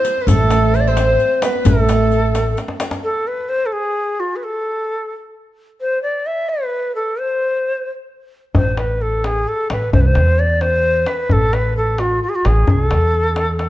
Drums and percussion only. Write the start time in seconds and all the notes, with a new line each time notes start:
0.05 riq
0.17 tombak ka
0.28 riq, tombak dum
0.51 riq, tombak tek
0.74 riq
0.97 riq, tombak tek
1.20 riq
1.42 riq, tombak tek
1.55 tombak ka
1.65 riq, tombak dum
1.89 riq, tombak tek
2.12 riq
2.35 riq, tombak tek
2.57 riq, tombak tek
2.68 tombak ka
2.80 riq, tombak tek
2.91 riq, tombak ka
8.55 tombak dum
8.77 tombak tek
9.01 tombak ka
9.24 tombak tek
9.70 tombak tek
9.82 tombak ka
9.93 tombak dum
10.15 tombak tek
10.39 tombak ka
10.61 tombak tek
11.06 tombak tek
11.29 tombak dum
11.53 tombak tek
11.76 tombak ka
11.98 tombak tek
12.45 tombak tek
12.57 tombak ka
12.67 tombak dum
12.91 tombak tek
13.14 tombak ka
13.36 tombak tek
13.59 tombak tek